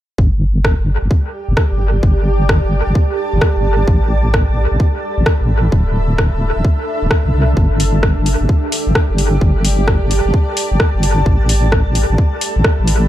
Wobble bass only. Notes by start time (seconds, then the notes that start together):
0.18 G1
0.79 G1
1.02 G1
1.49 G1
1.72 G1
2.03 G1
2.64 G1
2.87 G1
3.33 G1
3.56 G1
3.88 A1
4.49 A1
4.72 A1
5.18 A1
5.41 A1
5.72 D1
6.33 D1
6.56 D1
7.02 D1
7.26 C2
7.34 C2
7.57 G1
8.18 G1
8.41 G1
8.87 G1
9.10 G1
9.41 G1
10.02 G1
10.25 G1
10.72 G1
10.95 G1
11.26 A1
11.87 A1
12.10 A1
12.56 A1
12.79 A1